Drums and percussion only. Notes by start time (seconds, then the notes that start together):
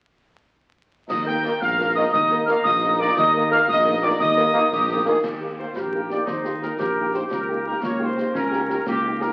1.10 concert bass drum, snare, crash
1.45 snare
1.62 concert bass drum, snare
2.14 concert bass drum, snare
2.31 snare
2.48 snare
2.65 concert bass drum, snare
3.17 concert bass drum, snare
3.52 snare
3.68 concert bass drum, snare
4.20 concert bass drum, snare
4.37 snare
4.55 snare
4.72 concert bass drum, snare
5.24 concert bass drum, snare, crash
5.76 concert bass drum, snare
6.10 snare
6.27 concert bass drum, snare
6.44 snare
6.62 snare
6.80 concert bass drum, snare
7.14 snare
7.31 concert bass drum, snare
7.83 concert bass drum, snare
8.18 snare
8.35 concert bass drum, snare
8.53 snare
8.70 snare
8.87 concert bass drum, snare
9.21 snare